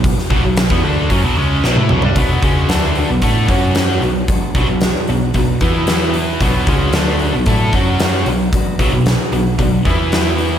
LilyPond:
<<
  \new Staff \with { instrumentName = "Steel-string acoustic guitar" } { \time 4/4 \key b \dorian \tempo 4 = 113 r1 | <b, b d' fis' b'>8 <d' fis' b'>8 <b d' fis' b'>8 <d' fis' b'>8 <b, b d' fis' b'>8 <cis' fis' cis''>8 <fis cis' fis' cis''>8 <d' fis' b'>8 | <b, fis d' fis' b'>8 <d' fis' b'>8 <fis d' fis' b'>8 <d' fis' b'>8 <b, fis d' fis' b'>8 <b e' b'>8 <e b e' b'>8 <b e' b'>8 | <b, fis d' fis' b'>8 <d' fis' b'>8 <fis d' fis' b'>8 <d' fis' b'>8 <b, fis d' fis' b'>8 <cis' fis' cis''>8 <fis cis' fis' cis''>8 <d' fis' b'>8 |
<b, fis d' fis' b'>8 <d' fis' b'>8 <fis d' fis' b'>8 <d' fis' b'>8 <b, fis d' fis' b'>8 <b e' b'>8 <e b e' b'>8 <b e' b'>8 | }
  \new Staff \with { instrumentName = "Distorted electric guitar" } { \clef bass \time 4/4 \key b \dorian <b, fis>16 r16 <b, fis>16 <b, fis>8 <e b>16 <d a d'>8 <fis cis'>16 <b, fis>16 <cis gis cis'>8 <b, fis>16 <a e'>16 <b, fis>16 <g d'>16 | <b, fis b>8 <cis gis cis'>8 <d a d'>8. <b, fis>16 <a e' a'>8 <fis cis' fis'>4 <b, fis>8 | r8 <b, fis>16 <b, fis>8 r16 <b, fis>8 <b, fis>8 <e b e'>4. | <b, fis b>8 <cis gis cis'>8 <d a d'>8. <b, fis>16 <a e' a'>8 <fis cis' fis'>4 <b, fis>8 |
r8 <b, fis>16 <b, fis>8 r16 <b, fis>8 <b, fis>8 <e b e'>4. | }
  \new Staff \with { instrumentName = "Picked electric bass" } { \clef bass \time 4/4 \key b \dorian b,,16 r16 b,,16 b,,8 e,16 d,8 fis,16 b,,16 cis,8 b,,16 a,16 b,,16 g,16 | b,,8 cis,8 d,8. b,,16 a,8 fis,4 b,,8 | r8 b,,16 b,,8 r16 b,,8 b,,8 e,4. | b,,8 cis,8 d,8. b,,16 a,8 fis,4 b,,8 |
r8 b,,16 b,,8 r16 b,,8 b,,8 e,4. | }
  \new DrumStaff \with { instrumentName = "Drums" } \drummode { \time 4/4 <hho bd>16 sn16 bd8 <hho sn>16 bd8. <hho bd>4 sn16 tommh16 toml16 tomfh16 | <hho bd>8 <hho bd>8 <hho sn>8 hho8 <hho bd>8 <hho bd>8 <hho sn>8 hho8 | <hho bd>8 <hho bd>8 <hho sn>8 hho8 <hho bd>8 <hho bd>8 <hho sn>8 hho8 | <hho bd>8 <hho bd>8 <hho sn>8 hho8 <hho bd>8 <hho bd>8 <hho sn>8 hho8 |
<hho bd>8 <hho bd>8 <hho sn>8 hho8 <hho bd>8 <hho bd>8 <hho sn>8 hho8 | }
>>